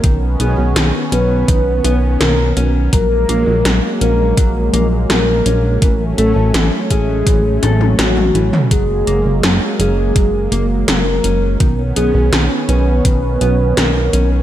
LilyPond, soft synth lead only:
\new Staff \with { instrumentName = "Soft synth lead" } { \time 4/4 \key fis \major \tempo 4 = 83 ais'8 gis'8 r8 b'4. ais'8 r8 | ais'4. ais'4. ais'4~ | ais'8 a'8 r8 gis'4. fis'8 r8 | gis'4. gis'4. ais'4~ |
ais'8 gis'8 r8 b'4. ais'8 r8 | }